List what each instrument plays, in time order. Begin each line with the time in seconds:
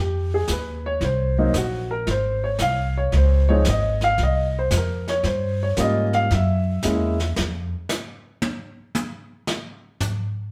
Already playing: upright bass F2
0.00 upright piano G4
0.34 upright piano G#4
0.48 upright bass D#2, upright piano B4, snare, hi-hat pedal
0.86 upright piano C#5
1.01 upright bass C2, upright piano C5, brush sweep, snare
1.38 upright piano F#3 A#3 C4 D#4
1.54 upright bass A#1, upright piano F#4, snare, hi-hat pedal
1.91 upright piano A#4
2.07 upright bass G#1, upright piano C5, brush sweep, snare
2.44 upright piano C#5
2.59 upright bass C2, upright piano F5, snare, hi-hat pedal
2.98 upright piano C#5
3.12 upright bass C#2, brush sweep, snare
3.17 upright piano C5
3.49 upright piano F3 G#3 C4 D#4 C#5
3.65 upright bass G#1, snare, hi-hat pedal
3.69 upright piano D#5
4.01 upright piano F5, snare
4.18 upright bass C2, brush sweep, snare
4.23 upright piano D#5
4.59 upright piano C5
4.70 upright bass F2, snare, hi-hat pedal
4.77 upright piano A#4
5.08 upright piano C#5, snare
5.23 upright bass G2, upright piano C5, brush sweep, snare
5.63 upright piano C#5
5.77 upright bass G#2, upright piano G3 A#3 C#4 F4 D#5, snare, hi-hat pedal
6.13 upright piano F5, snare
6.31 upright bass F#2, upright piano E5, brush sweep, snare
6.83 upright bass E2, upright piano G#3 A#3 C#4 E4, snare, hi-hat pedal
7.20 snare
7.36 upright bass F2, snare
7.89 snare, hi-hat pedal
8.42 high tom
8.95 hi-hat pedal, high tom
9.47 snare
10.00 floor tom, hi-hat pedal